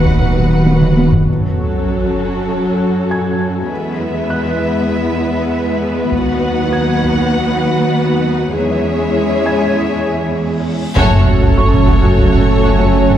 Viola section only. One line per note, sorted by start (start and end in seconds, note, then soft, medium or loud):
0.00 1.04 F#4 medium
1.27 3.66 F#3 soft
1.27 3.65 F#4 soft
3.69 6.08 G#3 soft
3.69 8.50 B3 soft
6.11 8.50 F#4 soft
8.55 10.73 G#3 soft
8.55 10.77 G#4 soft
10.97 11.10 F#4 medium
11.12 11.18 F#4 soft
11.27 11.33 F#4 medium
11.41 11.47 F#4 medium
11.57 11.63 F#4 soft
11.87 11.93 F#4 medium
12.02 12.08 F#4 soft
12.18 12.24 F#4 medium
12.32 12.38 F#4 soft
12.63 12.69 F#4 medium
12.77 12.84 F#4 medium
12.93 12.99 F#4 soft
13.08 13.14 F#4 medium